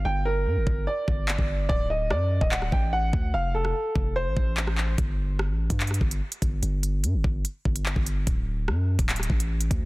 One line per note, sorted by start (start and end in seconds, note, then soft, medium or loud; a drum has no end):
0.05 0.48 G1 loud
0.05 0.23 G5 medium
0.25 0.83 A#4 medium
0.46 0.58 G2 loud
0.56 0.66 G1 loud
0.67 0.86 G1 loud
0.67 kick loud
0.87 1.65 D5 medium
1.08 1.37 G1 loud
1.08 kick medium
1.28 clap loud
1.39 1.68 G1 loud
1.39 kick medium
1.69 2.12 D1 loud
1.69 1.87 D5 loud
1.69 kick loud
1.90 2.08 D#5 medium
2.11 2.40 F#2 loud
2.11 2.40 D5 medium
2.11 cross-stick loud
2.41 2.71 D1 loud
2.41 2.50 D#5 medium
2.41 kick loud
2.52 2.70 F#5 medium
2.52 clap loud
2.62 cross-stick medium
2.72 3.12 A1 loud
2.72 2.90 G5 medium
2.72 kick medium
2.93 3.31 F#5 medium
3.13 3.33 D2 loud
3.13 kick loud
3.34 3.73 F1 loud
3.34 3.52 F5 medium
3.55 4.12 A4 medium
3.65 cross-stick medium
3.96 4.28 F1 loud
3.96 kick loud
4.16 4.94 C5 medium
4.26 4.36 A1 medium
4.37 4.96 A1 loud
4.37 kick medium
4.57 clap loud
4.67 cross-stick medium
4.78 clap medium
4.98 5.51 G1 loud
4.98 kick loud
4.98 closed hi-hat medium
5.39 cross-stick loud
5.50 5.69 A1 loud
5.70 6.00 G2 loud
5.70 kick loud
5.70 closed hi-hat medium
5.80 clap loud
5.80 closed hi-hat soft
5.87 cross-stick medium
5.87 closed hi-hat medium
5.94 closed hi-hat medium
6.01 6.21 G1 loud
6.01 kick medium
6.11 closed hi-hat medium
6.32 closed hi-hat medium
6.42 6.62 G1 loud
6.42 kick loud
6.42 closed hi-hat medium
6.63 7.05 G1 loud
6.63 closed hi-hat medium
6.83 closed hi-hat medium
7.04 7.15 G2 loud
7.04 closed hi-hat medium
7.14 7.24 G1 loud
7.24 7.44 G1 loud
7.24 kick loud
7.45 closed hi-hat medium
7.65 7.95 G1 loud
7.65 kick medium
7.76 closed hi-hat medium
7.86 clap loud
7.96 8.26 G1 medium
7.96 kick medium
8.06 closed hi-hat medium
8.27 8.70 D1 loud
8.27 kick loud
8.27 closed hi-hat medium
8.68 8.97 F#2 loud
8.68 cross-stick medium
8.99 9.28 D1 loud
8.99 kick loud
8.99 closed hi-hat medium
9.09 clap loud
9.09 closed hi-hat soft
9.16 cross-stick medium
9.16 closed hi-hat medium
9.23 closed hi-hat medium
9.30 9.69 A1 loud
9.30 kick medium
9.40 closed hi-hat medium
9.61 closed hi-hat medium
9.71 9.85 D2 loud
9.71 kick loud
9.71 closed hi-hat medium